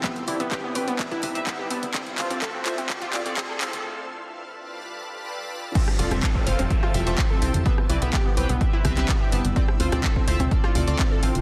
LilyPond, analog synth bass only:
\new Staff \with { instrumentName = "Analog synth bass" } { \clef bass \time 4/4 \key d \dorian \tempo 4 = 126 r8 c,16 c,16 r8 c,16 c,16 r8 c,16 c,16 r8 c,16 c,16 | r8 d,16 d,16 r8 d,16 d,16 r8 d,16 d,16 r8 d,16 d,16 | r1 | r8 f,,16 f,,16 r8 f,,16 f,,16 r8 f,,16 f,,16 r8 c,16 f,16 |
r8 c,16 c,16 r8 c,16 c,16 r8 c,16 c,16 r8 g,,16 g,,16 | r8 d,16 d,16 r8 d,16 d,16 r8 d,16 d,16 r8 a,,16 d,,16 | }